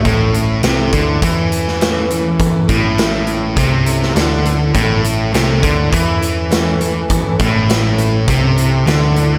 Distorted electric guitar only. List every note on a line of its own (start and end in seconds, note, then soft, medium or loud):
0.05 0.63 A2 medium
0.63 0.92 C3 medium
0.93 1.21 D3 medium
1.22 2.68 E3 medium
2.69 3.56 A2 medium
3.57 4.15 C3 loud
4.16 4.74 D3 medium
4.75 5.33 A2 medium
5.34 5.63 C3 loud
5.64 5.92 D3 medium
5.93 7.39 E3 loud
7.40 8.27 A2 medium
8.28 8.86 C3 loud
8.88 9.38 D3 medium